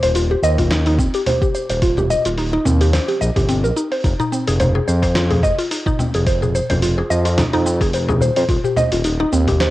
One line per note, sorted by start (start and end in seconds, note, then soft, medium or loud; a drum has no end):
0.03 0.35 D#1 medium
0.03 0.14 C5 medium
0.03 open hi-hat soft
0.03 cabasa soft
0.15 0.24 F4 medium
0.15 open hi-hat medium
0.15 cabasa soft
0.31 0.43 G4 medium
0.43 1.00 D#2 medium
0.43 0.58 D#5 loud
0.43 cabasa medium
0.58 0.66 F4 medium
0.58 kick medium
0.58 open hi-hat soft
0.58 low conga medium
0.58 cabasa soft
0.71 0.80 D#4 medium
0.71 snare medium
0.71 open hi-hat medium
0.71 cabasa soft
0.86 0.98 D#4 loud
0.86 open hi-hat soft
0.99 1.08 D#1 medium
0.99 1.14 C4 medium
0.99 kick loud
0.99 cabasa medium
1.14 1.22 G4 medium
1.14 open hi-hat soft
1.14 cabasa soft
1.26 1.41 C5 medium
1.26 open hi-hat medium
1.26 low conga medium
1.26 cabasa soft
1.42 1.53 G4 medium
1.42 kick loud
1.42 cabasa soft
1.55 1.69 C5 medium
1.55 cabasa medium
1.69 2.15 D#1 loud
1.69 1.81 C5 medium
1.69 open hi-hat soft
1.69 cabasa soft
1.82 1.91 F4 medium
1.82 kick loud
1.82 open hi-hat medium
1.82 cabasa soft
1.97 2.10 G4 medium
1.97 low conga medium
1.97 cabasa soft
2.10 2.25 D#5 loud
2.10 cabasa medium
2.25 2.58 D#1 medium
2.25 2.33 F4 medium
2.25 open hi-hat soft
2.25 cabasa soft
2.37 2.47 D#4 medium
2.37 open hi-hat medium
2.37 cabasa soft
2.53 2.65 D#4 medium
2.65 2.99 D#2 medium
2.65 2.80 C4 medium
2.65 low conga medium
2.65 cabasa medium
2.81 2.88 G4 medium
2.81 open hi-hat soft
2.81 cabasa soft
2.93 3.07 C5 medium
2.93 snare medium
2.93 open hi-hat medium
2.93 cabasa soft
3.08 3.20 G4 medium
3.08 open hi-hat soft
3.21 3.30 A#1 medium
3.21 3.35 D#5 medium
3.21 cabasa medium
3.36 3.66 G1 medium
3.36 3.48 G4 medium
3.36 kick loud
3.36 open hi-hat soft
3.36 low conga medium
3.36 cabasa soft
3.49 3.63 C4 medium
3.49 open hi-hat medium
3.49 cabasa soft
3.64 3.72 A#1 medium
3.64 3.76 A#4 medium
3.64 cabasa soft
3.77 3.90 D#4 medium
3.77 cabasa medium
3.92 4.04 C5 medium
3.92 open hi-hat soft
3.92 cabasa soft
4.04 4.14 F1 loud
4.04 4.13 D#4 medium
4.04 kick loud
4.04 open hi-hat medium
4.04 cabasa soft
4.20 4.32 D#4 loud
4.20 darbuka dum medium
4.20 cabasa soft
4.32 4.47 C4 medium
4.32 darbuka ka soft
4.32 cabasa medium
4.48 4.80 F1 medium
4.48 4.55 G#4 medium
4.48 open hi-hat soft
4.48 cabasa soft
4.60 4.74 C5 medium
4.60 open hi-hat soft
4.60 low conga medium
4.60 cabasa soft
4.75 4.87 G#4 medium
4.75 darbuka tek medium
4.88 5.45 F2 medium
4.88 5.02 C5 medium
4.88 cabasa medium
5.03 5.14 C5 medium
5.03 kick medium
5.03 open hi-hat soft
5.03 darbuka ka medium
5.03 darbuka tek medium
5.03 cabasa soft
5.15 5.24 F4 medium
5.15 snare medium
5.15 open hi-hat medium
5.15 cabasa soft
5.31 5.43 G#4 medium
5.31 open hi-hat soft
5.31 darbuka ka medium
5.31 low conga medium
5.43 5.52 F1 medium
5.43 5.58 D#5 loud
5.43 kick loud
5.43 darbuka ka medium
5.43 cabasa medium
5.59 5.66 F4 medium
5.59 open hi-hat soft
5.59 cabasa soft
5.71 5.80 D#4 medium
5.71 open hi-hat medium
5.71 cabasa soft
5.86 5.98 D#4 loud
5.86 kick loud
5.86 darbuka ka medium
5.86 darbuka dum medium
5.86 cabasa soft
5.99 6.13 C4 medium
5.99 low conga medium
5.99 cabasa medium
6.14 6.60 F1 loud
6.14 6.21 G#4 medium
6.14 open hi-hat soft
6.14 cabasa soft
6.26 6.40 C5 medium
6.26 kick loud
6.26 open hi-hat medium
6.26 cabasa soft
6.42 6.53 G#4 medium
6.42 darbuka dum loud
6.42 cabasa soft
6.55 6.69 C5 medium
6.55 darbuka ka soft
6.55 cabasa medium
6.70 7.02 F1 medium
6.70 6.81 C5 medium
6.70 open hi-hat soft
6.70 low conga medium
6.70 cabasa soft
6.82 6.91 F4 medium
6.82 open hi-hat medium
6.82 cabasa soft
6.98 7.10 G#4 medium
6.98 darbuka tek medium
7.10 7.43 F2 loud
7.10 7.25 D#5 loud
7.10 cabasa medium
7.25 7.33 F4 medium
7.25 open hi-hat soft
7.25 darbuka ka medium
7.25 darbuka tek medium
7.25 cabasa soft
7.38 7.47 D#4 medium
7.38 snare medium
7.38 open hi-hat medium
7.38 low conga medium
7.38 cabasa soft
7.53 7.82 F2 medium
7.53 7.65 D#4 loud
7.53 open hi-hat soft
7.66 7.80 C4 medium
7.66 cabasa medium
7.81 8.23 F1 loud
7.81 7.88 G#4 medium
7.81 kick loud
7.81 open hi-hat soft
7.81 darbuka tek medium
7.81 cabasa soft
7.93 8.07 C5 medium
7.93 open hi-hat medium
7.93 cabasa soft
8.08 8.20 G#4 medium
8.08 darbuka tek medium
8.08 low conga medium
8.08 cabasa soft
8.21 8.30 D#1 loud
8.21 8.36 C5 medium
8.21 darbuka dum medium
8.21 cabasa medium
8.36 8.44 F2 loud
8.36 8.48 C5 medium
8.36 open hi-hat soft
8.36 cabasa soft
8.49 8.58 D#1 loud
8.49 8.58 F4 medium
8.49 kick loud
8.49 open hi-hat medium
8.49 cabasa soft
8.64 8.76 G4 medium
8.64 darbuka dum medium
8.64 cabasa soft
8.77 8.91 D#5 loud
8.77 darbuka ka soft
8.77 low conga medium
8.77 cabasa medium
8.92 9.24 D#1 medium
8.92 8.99 F4 medium
8.92 open hi-hat soft
8.92 cabasa soft
9.04 9.13 D#4 medium
9.04 open hi-hat medium
9.04 cabasa soft
9.20 9.32 D#4 loud
9.20 darbuka tek medium
9.32 9.70 D#2 medium
9.32 9.47 C4 medium
9.32 cabasa medium
9.47 9.55 G4 medium
9.47 kick medium
9.47 open hi-hat soft
9.47 darbuka ka medium
9.47 darbuka tek medium
9.47 low conga medium
9.47 cabasa soft
9.60 9.70 C5 medium
9.60 snare medium
9.60 open hi-hat medium
9.60 cabasa soft